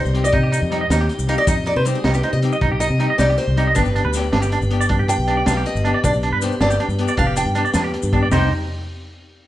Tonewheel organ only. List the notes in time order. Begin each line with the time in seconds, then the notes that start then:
Already playing: D#4 G4 C5
3.75 B3 B4
8.33 D#4 G4 C5